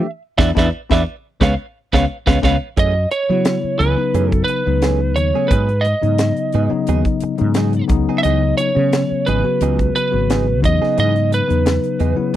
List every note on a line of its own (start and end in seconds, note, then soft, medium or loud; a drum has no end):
0.38 0.52 E2 medium
0.38 0.50 B3 medium
0.38 0.50 D4 medium
0.38 0.50 E4 medium
0.38 0.50 B4 medium
0.38 0.50 D5 medium
0.38 0.50 E5 medium
0.38 kick medium
0.38 snare medium
0.55 0.69 E2 medium
0.55 0.66 B3 loud
0.55 0.67 B3 medium
0.55 0.66 D4 loud
0.55 0.67 D4 medium
0.55 0.66 E4 medium
0.55 0.67 E4 loud
0.55 0.69 B4 medium
0.55 0.68 D5 medium
0.55 0.68 E5 medium
0.55 kick medium
0.55 snare medium
0.90 1.03 E2 loud
0.90 1.01 B3 loud
0.90 1.02 B3 medium
0.90 1.01 D4 loud
0.90 1.02 D4 medium
0.90 1.01 E4 loud
0.90 1.02 E4 medium
0.90 1.03 B4 loud
0.90 1.03 D5 medium
0.90 1.02 E5 loud
0.90 kick medium
0.90 snare medium
1.40 1.55 C#2 medium
1.40 1.52 G#3 loud
1.40 1.53 G#3 loud
1.40 1.52 B3 medium
1.40 1.53 B3 medium
1.40 1.52 C#4 medium
1.40 1.53 C#4 medium
1.40 1.53 B4 medium
1.40 1.53 C#5 medium
1.40 1.54 F5 medium
1.40 kick medium
1.40 snare medium
1.93 2.06 C#2 medium
1.93 2.04 G#3 medium
1.93 2.04 B3 medium
1.93 2.04 C#4 medium
1.93 2.04 B4 medium
1.93 2.04 C#5 medium
1.93 2.04 F5 medium
1.93 kick medium
1.93 snare medium
2.26 2.39 C#2 medium
2.26 2.37 G#3 medium
2.26 2.38 G#3 medium
2.26 2.37 B3 medium
2.26 2.38 B3 medium
2.26 2.38 C#4 medium
2.26 2.38 B4 medium
2.26 2.38 C#5 medium
2.26 2.38 F5 medium
2.26 kick medium
2.26 snare medium
2.42 2.57 C#2 medium
2.42 2.54 G#3 medium
2.42 2.55 G#3 medium
2.42 2.55 B3 medium
2.42 2.54 C#4 medium
2.42 2.55 C#4 medium
2.42 2.56 B4 medium
2.42 2.56 C#5 loud
2.42 2.56 F5 medium
2.42 kick medium
2.42 snare medium
2.77 3.05 F#2 medium
2.77 2.95 E3 medium
2.77 2.95 A3 medium
2.77 2.94 C#4 medium
2.77 2.94 G#4 medium
2.77 3.11 D#5 medium
2.77 kick loud
2.77 closed hi-hat medium
2.95 muted clean electric guitar stroke soft
3.11 3.82 C#5 medium
3.11 muted clean electric guitar stroke soft
3.11 closed hi-hat medium
3.29 3.94 C#3 medium
3.29 3.94 F#3 medium
3.29 3.57 F#3 medium
3.29 3.94 B3 medium
3.29 3.94 E4 medium
3.45 muted clean electric guitar stroke soft
3.45 snare loud
3.45 closed hi-hat medium
3.64 muted fretless electric bass stroke soft
3.79 3.95 C#2 medium
3.79 3.98 E3 soft
3.79 3.97 A3 medium
3.79 3.97 C#4 medium
3.79 3.97 G#4 soft
3.79 4.32 B4 medium
3.79 closed hi-hat medium
3.97 4.62 C#3 medium
3.97 4.62 F#3 medium
3.97 4.62 B3 medium
3.97 4.62 D#4 medium
3.97 muted clean electric guitar stroke soft
4.14 4.42 F#2 medium
4.14 4.33 E3 medium
4.14 4.32 A3 medium
4.14 4.32 C#4 medium
4.14 4.32 G#4 medium
4.14 closed hi-hat medium
4.32 4.43 A4 medium
4.32 muted clean electric guitar stroke soft
4.32 kick medium
4.32 closed hi-hat soft
4.44 5.17 B4 medium
4.44 closed hi-hat soft
4.49 muted clean electric guitar stroke soft
4.66 5.17 C#2 medium
4.66 5.30 C#3 medium
4.66 5.31 F#3 medium
4.66 5.31 B3 medium
4.66 5.31 D#4 medium
4.82 5.01 E3 soft
4.82 5.01 A3 medium
4.82 5.00 C#4 medium
4.82 5.00 G#4 medium
4.82 snare medium
4.82 closed hi-hat medium
5.01 muted clean electric guitar stroke soft
5.16 5.31 D#2 medium
5.16 5.52 C#5 medium
5.16 muted clean electric guitar stroke soft
5.16 closed hi-hat medium
5.34 5.51 C#3 medium
5.34 5.51 F#3 medium
5.34 5.51 A3 soft
5.34 5.51 B3 medium
5.34 5.51 C#4 medium
5.34 5.51 C#4 soft
5.34 5.51 G#4 soft
5.48 5.93 G#2 medium
5.48 5.69 F#3 medium
5.48 5.70 B3 medium
5.48 5.85 B4 medium
5.48 kick loud
5.48 closed hi-hat medium
5.52 5.69 D#4 medium
5.52 5.69 G#4 medium
5.69 muted clean electric guitar stroke soft
5.69 closed hi-hat soft
5.81 7.84 D#5 medium
5.81 closed hi-hat soft
5.86 muted clean electric guitar stroke soft
6.02 6.31 G#2 medium
6.02 6.67 C#3 medium
6.02 6.67 F#3 medium
6.02 6.67 B3 medium
6.02 6.67 D#4 medium
6.02 closed hi-hat soft
6.18 muted clean electric guitar stroke soft
6.18 snare loud
6.18 closed hi-hat medium
6.37 closed hi-hat soft
6.53 6.69 G#2 medium
6.53 6.72 F#3 medium
6.53 6.72 B3 medium
6.53 6.72 D#4 medium
6.53 6.72 G#4 medium
6.53 closed hi-hat soft
6.70 7.35 C#3 medium
6.70 7.35 F#3 medium
6.70 7.35 B3 medium
6.70 7.35 D#4 medium
6.70 muted fretless electric bass stroke soft
6.70 muted clean electric guitar stroke soft
6.87 7.03 D#2 medium
6.87 7.06 F#3 medium
6.87 7.06 B3 medium
6.87 7.06 D#4 medium
6.87 7.06 G#4 medium
6.87 closed hi-hat medium
7.05 muted clean electric guitar stroke soft
7.05 kick medium
7.05 closed hi-hat soft
7.20 muted clean electric guitar stroke soft
7.20 muted fretless electric bass stroke soft
7.20 closed hi-hat medium
7.38 7.81 G#2 medium
7.38 7.87 C#3 medium
7.38 7.87 F#3 medium
7.38 7.87 B3 medium
7.38 7.88 D#4 medium
7.38 closed hi-hat soft
7.54 7.74 F#3 medium
7.54 7.74 B3 medium
7.54 7.74 D#4 medium
7.54 7.73 G#4 medium
7.54 snare medium
7.54 closed hi-hat medium
7.73 muted clean electric guitar stroke soft
7.73 closed hi-hat soft
7.88 8.05 C#2 medium
7.88 8.70 C#3 medium
7.88 8.70 F#3 medium
7.88 8.70 B3 medium
7.88 8.71 D#4 medium
7.88 muted clean electric guitar stroke soft
7.88 kick medium
7.88 closed hi-hat medium
8.09 8.24 B3 soft
8.09 8.24 D#4 soft
8.09 8.25 G#4 soft
8.18 8.23 E5 medium
8.23 8.52 C#2 medium
8.23 8.43 E3 medium
8.23 8.43 B3 medium
8.23 8.43 D#4 medium
8.23 8.42 G#4 medium
8.23 8.57 D#5 medium
8.23 closed hi-hat medium
8.58 9.28 C#5 loud
8.58 muted clean electric guitar stroke soft
8.58 closed hi-hat medium
8.75 9.40 C#3 medium
8.75 9.04 C#3 medium
8.75 9.40 F#3 medium
8.75 9.40 B3 medium
8.75 9.40 C#4 medium
8.93 muted clean electric guitar stroke soft
8.93 snare loud
8.93 closed hi-hat medium
9.11 muted fretless electric bass stroke soft
9.26 9.42 G#1 loud
9.26 9.45 E3 medium
9.26 9.46 B3 medium
9.26 9.45 D#4 medium
9.26 9.45 G#4 medium
9.26 9.94 B4 medium
9.26 closed hi-hat soft
9.43 10.08 C#3 medium
9.43 10.08 F#3 medium
9.43 10.08 B3 medium
9.43 10.09 F#4 medium
9.43 muted clean electric guitar stroke soft
9.61 9.89 C#2 medium
9.61 9.80 E3 medium
9.61 9.80 B3 medium
9.61 9.80 D#4 medium
9.61 9.80 G#4 medium
9.61 closed hi-hat medium
9.79 muted clean electric guitar stroke soft
9.79 kick medium
9.79 closed hi-hat soft
9.96 10.60 B4 medium
9.96 muted clean electric guitar stroke soft
9.96 closed hi-hat soft
10.11 10.64 G#1 medium
10.11 10.61 C#3 medium
10.11 10.61 F#3 medium
10.11 10.61 B3 medium
10.11 10.63 F#4 medium
10.30 10.48 E3 medium
10.30 10.47 B3 medium
10.30 10.47 D#4 medium
10.30 10.47 G#4 medium
10.30 snare loud
10.30 closed hi-hat medium
10.48 muted clean electric guitar stroke soft
10.62 10.78 E2 medium
10.62 11.44 C#3 medium
10.62 11.44 F#3 medium
10.62 11.44 B3 medium
10.62 11.44 D#4 medium
10.62 10.99 D#5 medium
10.62 muted clean electric guitar stroke soft
10.62 kick medium
10.62 closed hi-hat medium
10.82 10.96 B3 soft
10.82 10.96 D#4 soft
10.82 10.97 G#4 soft
10.82 snare soft
10.97 11.40 G#2 medium
10.97 11.15 E3 medium
10.97 11.15 B3 medium
10.97 11.15 D#4 medium
10.97 11.15 G#4 medium
10.97 11.30 D#5 loud
10.97 closed hi-hat medium
11.16 muted clean electric guitar stroke soft
11.16 closed hi-hat soft
11.31 12.36 B4 medium
11.31 muted clean electric guitar stroke soft
11.31 closed hi-hat medium
11.48 11.78 E2 medium
11.48 12.13 C#3 medium
11.48 12.13 F#3 medium
11.48 12.13 B3 medium
11.48 12.13 D#4 medium
11.48 closed hi-hat soft
11.66 muted clean electric guitar stroke soft
11.66 snare loud
11.66 closed hi-hat medium
11.84 closed hi-hat soft
11.99 12.15 E2 medium
11.99 12.18 E3 medium
11.99 12.17 B3 soft
11.99 12.17 D#4 medium
11.99 12.16 G#4 soft
11.99 closed hi-hat medium
12.16 12.36 C#3 medium
12.16 12.36 F#3 medium
12.16 12.36 B3 medium
12.16 12.36 E4 medium
12.16 muted clean electric guitar stroke soft
12.16 muted fretless electric bass stroke soft